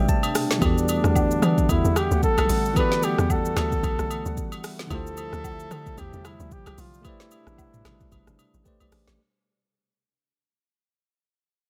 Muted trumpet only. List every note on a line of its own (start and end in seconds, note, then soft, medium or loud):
0.63 1.71 D4 loud
1.70 1.98 E4 loud
1.97 2.23 G4 loud
2.24 2.79 A4 loud
2.77 3.06 B4 loud
3.04 3.32 G4 loud
3.31 4.64 A4 loud
4.92 6.01 A4 loud
5.99 6.27 G4 loud
6.26 6.54 E4 loud
6.53 6.81 G4 loud
6.80 7.08 F4 loud
7.06 8.66 E4 loud